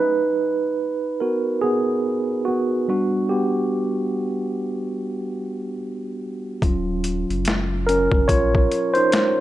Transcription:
Already playing: D#4 B4
1.20 B3 F#4 A#4
1.62 B3 G#4
2.45 B3 F#4
2.88 G3 D4 F#4
3.29 B3 G4
6.62 D#1 F#3 C#4 F4, kick, closed hi-hat
7.04 closed hi-hat
7.29 F#1, closed hi-hat
7.45 snare, closed hi-hat
7.87 C#4 A#4, closed hi-hat
8.12 F#1, kick
8.28 A#1 F4 C#5, kick, closed hi-hat
8.55 kick
8.72 closed hi-hat
8.94 D#4 C5, closed hi-hat
9.12 snare, closed hi-hat

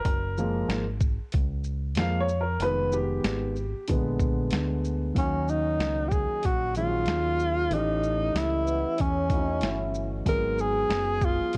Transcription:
Already playing: A#4
0.05 F#1, kick, closed hi-hat
0.37 F3 G#3 A#3, shaker
0.68 G#1, snare, closed hi-hat
1.01 kick, shaker
1.20 muted fingered electric bass stroke
1.32 C#2, kick, closed hi-hat
1.64 shaker
1.95 F2 F3 G#3 A#3, snare, closed hi-hat
2.00 F5
2.21 C#5
2.29 shaker
2.41 A#4
2.60 F1 D#3 G#3 B3 B4, closed hi-hat
2.92 G4, shaker
3.24 G#1, snare, closed hi-hat
3.56 shaker
3.76 muted fingered electric bass stroke
3.88 A#1 D3 G#3 B3, kick, closed hi-hat
4.19 kick, shaker
4.50 D2, snare, closed hi-hat
4.84 shaker
5.14 D#2 D#3 F#3 A#3 C#4, kick, closed hi-hat
5.18 C#4 F#4
5.48 D#4, shaker
5.79 C#2, snare, closed hi-hat
6.08 G4, kick, shaker
6.13 G#4
6.43 A#1 F#4, kick, closed hi-hat
6.75 D#3 F3 A#3 C#4 F4 G#4, closed hi-hat, shaker
6.83 F#3
7.06 D#2, snare, closed hi-hat
7.39 shaker
7.70 A1 E3 A3 C#4 D#4 D#5, closed hi-hat
7.74 G4
8.03 shaker
8.34 C#2 A3 E4, snare, closed hi-hat
8.66 B3, shaker
8.98 E2 C#4, kick, closed hi-hat
9.30 E3 A3 C4 D#4 F#4 D#5, kick, closed hi-hat, shaker
9.39 C#4
9.61 G1 E4, snare, closed hi-hat
9.94 shaker
10.25 G#1 F#3 G#3 B3 D#4 G#4 A#4, kick, closed hi-hat
10.58 G#4, shaker
10.89 F#1, snare, closed hi-hat
11.21 F4, kick, shaker
11.41 muted fingered electric bass stroke
11.53 closed hi-hat

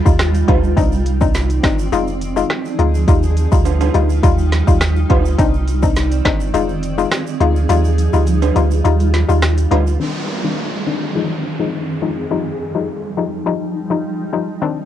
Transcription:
Already playing: G3 D#4 F4
0.06 D#2 G3 D#4 F4, kick, shaker
0.19 cross-stick, snare, closed hi-hat, shaker
0.35 closed hi-hat, shaker
0.48 D2 G3 D#4 F4, kick, closed hi-hat, high timbale
0.64 shaker
0.77 C2 C4 D4 D#4, kick, closed hi-hat, shaker
0.92 shaker
1.06 closed hi-hat, shaker
1.21 C4 D4 D#4, kick, shaker
1.34 snare, closed hi-hat, shaker
1.50 closed hi-hat, shaker
1.63 G1 C4 D4 D#4, kick, cross-stick, snare, closed hi-hat, shaker
1.79 shaker
1.92 F1 G#3 D#4 F4, closed hi-hat, shaker
2.07 shaker
2.21 closed hi-hat, shaker
2.36 G#3 D#4 F4, shaker
2.50 cross-stick, snare, closed hi-hat, shaker
2.65 shaker
2.79 D2 G#3 D#4 F4, closed hi-hat
2.95 shaker
3.08 D#2 G3 D#4 F4, kick, closed hi-hat, shaker
3.23 shaker
3.37 closed hi-hat, shaker
3.52 D2 G3 D#4 F4, kick, shaker
3.65 closed hi-hat, high timbale, shaker
3.81 closed hi-hat, high timbale, shaker
3.94 D2 G3 D#4 F4, closed hi-hat, shaker
4.10 shaker
4.23 D#2 G3 D#4 F4, kick, closed hi-hat, shaker
4.38 shaker
4.52 snare, closed hi-hat, shaker
4.67 D#2 G3 D#4 F4, kick, shaker
4.81 cross-stick, snare, closed hi-hat, shaker
4.96 shaker
5.10 D2 G3 D#4 F4, kick, closed hi-hat, high timbale
5.25 shaker
5.38 C2 C4 D4 D#4, kick, closed hi-hat, shaker
5.54 shaker
5.68 closed hi-hat, shaker
5.83 C4 D4 D#4, kick, shaker
5.96 snare, closed hi-hat, shaker
6.11 closed hi-hat, shaker
6.25 G1 C4 D4 D#4, kick, cross-stick, snare, closed hi-hat, shaker
6.40 shaker
6.54 F1 G#3 D#4 F4, closed hi-hat, shaker
6.69 shaker
6.83 closed hi-hat, shaker
6.98 G#3 D#4 F4, shaker
7.11 cross-stick, snare, closed hi-hat, shaker
7.27 shaker
7.40 D2 G#3 D#4 F4, closed hi-hat
7.56 shaker
7.69 D#2 G3 D#4 F4, closed hi-hat, shaker
7.85 shaker
7.98 closed hi-hat, shaker
8.13 D2 G3 D#4 F4, shaker
8.27 closed hi-hat, shaker
8.42 closed hi-hat, high timbale, shaker
8.56 D2 G3 D#4 F4, closed hi-hat, shaker
8.71 shaker
8.84 D#2 G3 D#4 F4, closed hi-hat, shaker
9.00 closed hi-hat, shaker
9.14 snare, closed hi-hat, shaker
9.29 D#2 G3 D#4 F4, shaker
9.42 cross-stick, snare, closed hi-hat, shaker
9.58 closed hi-hat, shaker
9.71 D2 G3 D#4 F4, closed hi-hat, high timbale
9.87 shaker
10.00 D#3 C4 D4, downlifter
10.44 D#3 C4 D4
10.86 D#3 C4 D4
11.15 F3 G#3 D#4
11.59 F3 G#3 D#4
12.02 F3 G#3 D#4
12.31 F3 G3 D#4
12.75 F3 G3 D#4
13.17 F3 G3 D#4
13.46 F3 G3 D#4
13.90 F3 G3 D#4
14.33 F3 G3 D#4
14.62 D#3 C4 D4, riser

